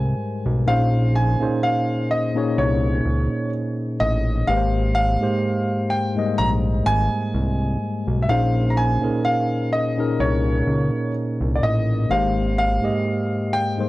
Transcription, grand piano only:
Already playing: G#5
0.68 F5
1.15 G#5
1.63 F5
2.11 D#5
2.58 C#5
4.00 D#5
4.47 F5
4.95 F5
5.90 G5
6.38 A#5
6.86 G#5
8.22 E5
8.29 F5
8.70 A#5
8.77 G#5
9.25 F5
9.73 D#5
10.20 C#5
11.56 D5
11.63 D#5
12.11 F5
12.58 F5
13.53 G5

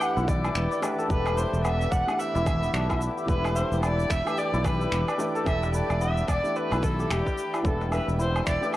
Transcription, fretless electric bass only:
0.17 B1
0.55 E1
1.10 E1
1.53 E1
1.92 E1
2.35 E1
2.73 B1
3.28 E1
3.72 E1
4.10 E1
4.54 B1
4.92 E1
5.47 E1
5.90 E1
6.28 E1
6.72 B1
7.10 E1
7.65 E1
8.08 E1
8.47 E1

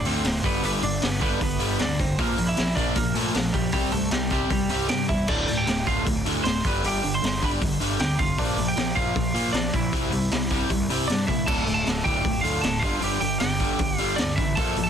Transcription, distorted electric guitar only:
0.05 D2 A2 D3
0.24 D2 A2
0.43 G2 D3 G3
0.63 G2 D3 G3
0.83 G2 D3
1.02 G2 D3
1.20 G2 D3 G3
1.40 G2 D3
1.59 G2 D3 G3
1.80 G2 D3
2.00 G2 D3
2.19 A#2 F3 A#3
2.38 A#2 F3
2.57 A#2 F3
2.78 A#2 F3 A#3
2.96 A#2 F3
3.16 A#2 F3 A#3
3.35 A#2 F3
3.55 A#2 F3
3.73 C3 G3 C4
3.94 C3 G3
4.13 C3 G3
4.32 C3 G3 C4
4.51 C3 G3
4.70 C3 G3 C4
4.89 C3 G3
5.09 C3 G3
5.28 D2 A2 D3
5.48 D2 A2
5.67 D2 A2
5.87 D2 A2 D3
6.06 D2 A2
6.25 D2 A2 D3
6.45 D2 A2
6.65 G2 D3 G3
6.84 G2 D3 G3
7.04 G2 D3
7.22 G2 D3
7.42 G2 D3 G3
7.61 G2 D3
7.80 G2 D3 G3
8.00 G2 D3
8.18 G2 D3
8.38 A#2 F3 A#3
8.57 A#2 F3
8.76 A#2 F3
8.95 A#2 F3 A#3
9.15 A#2 F3
9.34 A#2 F3 A#3
9.54 A#2 F3
9.73 A#2 F3
9.92 C3 G3 C4
10.12 C3 G3
10.32 C3 G3
10.51 C3 G3 C4
10.71 C3 G3
10.89 C3 G3 C4
11.10 C3 G3
11.28 C3 G3
11.46 D2 A2 D3
11.65 D2 A2
11.84 D2 A2
12.04 D2 A2 D3
12.24 D2 A2
12.43 D2 A2 D3
12.62 D2 A2
12.82 G2 D3 G3
13.01 G2 D3 G3
13.20 G2 D3
13.40 G2 D3
13.60 G2 D3 G3
13.79 G2 D3
13.99 G2 D3 G3
14.18 G2 D3
14.38 G2 D3
14.57 A#2 F3 A#3
14.78 A#2 F3

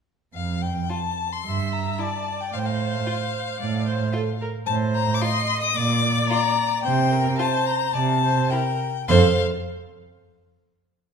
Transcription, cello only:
0.35 F2
1.45 G2
2.53 A2
3.61 A2
4.67 A2
5.76 A#2
6.85 C3
7.95 C3
9.09 F2

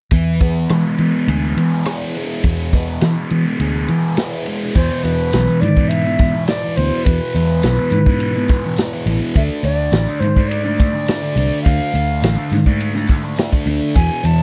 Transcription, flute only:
4.75 C5
5.03 B4
5.61 D5
5.89 E5
6.47 D5
6.77 C5
7.04 B4
9.36 E5
9.64 D5
10.20 C5
10.49 D5
11.63 F5
13.95 G#5
14.26 A5

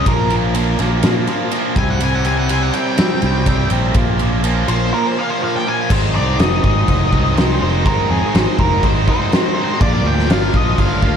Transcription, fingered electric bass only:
0.06 A#1
0.79 A#1
1.04 A#2
1.76 C2
3.23 C2
3.71 A#1
3.95 A#1
4.68 A#1
5.90 G#1
6.15 C2
6.39 F1
6.64 G#1
6.88 F1
7.13 C2
7.62 F1
7.86 G#1
8.10 F2
8.34 G#1
8.59 F1
8.83 G#1
9.81 A#1
10.04 D2
10.29 G1
10.54 A#1
10.78 G1
11.03 D2

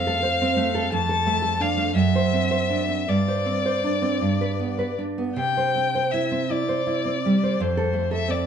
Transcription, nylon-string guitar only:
Already playing: F2 C4
0.07 A4
0.23 C5
0.41 C4
0.56 A3
0.75 A4
0.92 F2
1.09 A4
1.27 A3
1.42 A4
1.60 D4
1.77 A3
1.95 F#2
2.16 C5
2.33 C4
2.51 C5
2.70 D4
2.88 C4
3.08 G2
3.28 C5
3.46 C4
3.66 C5
3.84 D4
4.02 C4
4.21 G2
4.41 B4
4.59 B3
4.79 B4
4.99 D4
5.18 B3
5.36 C3
5.57 C5
5.76 C4
5.95 C5
6.14 E4
6.31 C4
6.50 E4
6.69 C5
6.87 E4
7.05 C4
7.25 G3
7.43 C5
7.60 F2
7.77 A4
7.93 A3
8.11 A4
8.28 C4

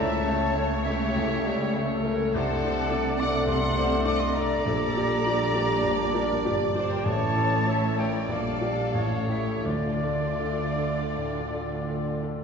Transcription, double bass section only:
Already playing: C#2
2.33 C2
4.64 A#1
6.45 G1
7.06 A1
8.30 A#1
8.95 A1
9.64 D2

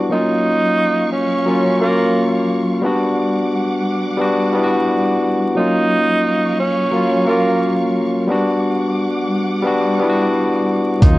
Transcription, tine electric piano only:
Already playing: G3 B3 D4 E4 F#4
0.09 F#3 A#3 C#4
0.14 F4
1.46 F#3 A#3 C#4
1.50 F4
1.79 F#3 A#3 C#4
1.84 F4
2.82 G3 B3 D4
2.86 F#4
4.17 G3 B3 D4
4.21 F#4
4.53 G3 B3 D4
4.57 E4
4.64 F#4
5.55 F#3 A#3 C#4
5.59 F4
6.91 F#3 A#3 C#4
6.96 F4
7.25 F#3 A#3 C#4
7.29 F4
8.27 G3 B3 D4
8.32 F#4
9.62 G3 B3 D4
9.67 F#4
9.98 G3 B3 D4
10.03 E4
10.09 F#4
11.00 F#3 A#3 C#4
11.05 F4

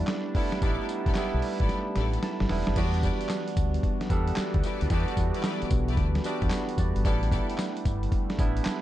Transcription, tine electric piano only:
Already playing: G3 B3 D4 E4
0.35 G3 B3 D4 E4
0.62 G3 B3 D4 D#4
0.70 E4
1.16 G3 B3 D4 E4
2.24 A5
2.50 G3 B3 D4 E4
2.77 F#3 B3 D4 F#4
2.83 G3
4.10 G3 B3 D4 A4
4.91 G3 B3 D4 F#4
6.25 G3 B3 D4 F#4
6.52 B5
6.79 D5
7.05 G3 B3 D4 E4
8.39 G3 B3 D4 E4

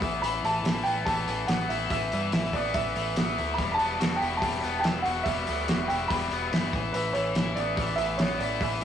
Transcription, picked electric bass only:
0.01 A1
0.23 A1
0.43 A1
0.63 A1
0.85 A1
1.06 A1
1.27 A1
1.48 A1
1.69 A1
1.89 A1
2.13 G2
2.33 A1
2.53 A1
2.74 A1
2.95 A1
3.17 A1
3.39 D2
3.58 E1
3.80 E1
4.00 E1
4.21 E1
4.42 E1
4.64 E1
4.84 E1
5.06 E1
5.26 E1
5.49 D2
5.69 E1
5.90 E1
6.10 E1
6.31 E1
6.52 G1
6.73 A1
6.94 A1
7.15 A1
7.36 A1
7.56 A1
7.77 A1
7.97 A1
8.18 A1
8.40 A1
8.61 A1

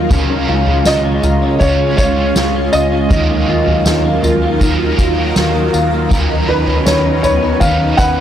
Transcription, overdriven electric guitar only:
0.09 C#3 G#3 C#4 F4
0.15 C#5
1.59 G#3 C#4 F4 C#5
1.97 C#4 F4 C#5
3.09 D#3 F#3 D#4 F4
3.14 A#4
4.60 F#3 D#4 F4 A#4
4.97 D#4 F4 A#4
6.09 D#3 F#3 C#4
6.13 D#4 B4
7.61 F#3 C#4 D#4 B4
7.98 C#4 D#4 B4

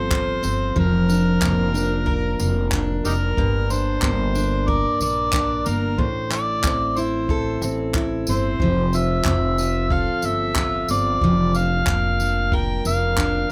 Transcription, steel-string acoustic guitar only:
Already playing: F3 C4 F4 A4
0.10 F4
0.43 C4
0.76 F3
1.09 D4
1.42 A#3
1.74 D4
2.06 A#4
2.39 A#3
2.73 D4
3.05 A#3
3.38 G2
3.71 D4
4.03 A#3
4.35 D4
4.68 A#4
5.02 A#3
5.34 D4
5.66 A#3
5.98 A2
6.31 E4
6.65 C4
6.97 E4
7.30 A4
7.63 C4
7.96 E4
8.29 C4
8.62 F3
8.94 F4
9.27 C4
9.59 F4
9.91 A4
10.25 C4
10.58 F4
10.90 C4
11.24 F3
11.56 D4
11.89 A#3
12.21 D4
12.53 A#4
12.86 A#3
13.17 D4

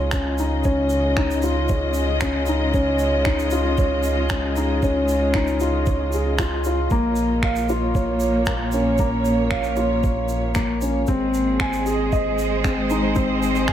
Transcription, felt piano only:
Already playing: C#4 D#4 F4 C#5
0.13 C#4
0.39 D#4
0.65 C#4
1.18 D#4
1.44 F4
1.70 C#5
2.22 C#4
2.49 D#4
2.74 C#4
3.26 D#4
3.52 F4
3.78 C#5
4.31 C#4
4.57 D#4
4.83 C#4
5.35 D#4
5.61 F4
5.87 C#5
6.14 G#4
6.39 F4
6.66 F4
6.92 A#3
7.44 F5
7.70 F4
7.95 C#5
8.47 A#3
8.73 C#4
8.99 A#3
9.51 F5
9.77 F4
10.03 C#5
10.55 A#3
10.82 C#4
11.08 C4
11.61 G#5
11.86 G#4
12.13 D#5
12.65 C4
12.91 D#4
13.16 C4
13.68 G#5

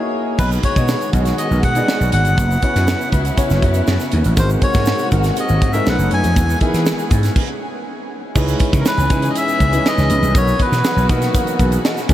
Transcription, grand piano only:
Already playing: A#3 E4 F#4 G#4 D#5
0.39 B3 D#4 F#4 G#4 D#5
0.76 B3 D#4 F#4 G#4 D#5
1.14 B3 D#4 F#4 G#4 D#5
1.76 B3 D#4 F#4 G#4 D5
1.83 D#5
2.62 B3 C#4 E4 F#4 C#5
3.37 B3 C#4 E4 F#4 C#5
4.36 G#3 C4 D#4 F#4 A#4
4.74 G#3 C4 D#4 F#4 A#4
5.12 G#3 C4 D#4 F#4 A#4
5.74 G#3 C4 D#4 F#4 A#4
5.85 A3 C#4 F#4 B4
5.92 D#4
6.60 G#3 B3 D#4 E4 A#4
6.67 B4
8.35 G#3 C#4 D#4 E4 B4
9.09 G#3 C#4 D#4 E4 B4
9.71 G#3 C#4 D#4 E4 B4
10.34 B3 D#4 F#4 A#4 B4
11.09 A#3 B3 D#4 F#4 A#4
11.17 B4
11.34 F#4 A#4
11.59 G#4 B4
11.85 B4 D#5
12.09 G#3 C#4 D#4 E4 B4

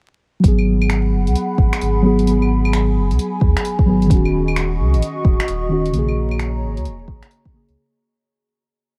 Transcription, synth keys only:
0.40 F#3 B3
0.48 G#4
2.02 F#3 B3
2.06 G#4
2.23 F#3 B3
2.31 G#4
3.86 F#3 B3 G#4
4.06 D#3
4.11 C#4 F#4
5.69 D#3 C#4 F#4
5.90 C#3 A#3
5.98 G#4
7.52 C#3 A#3 G#4

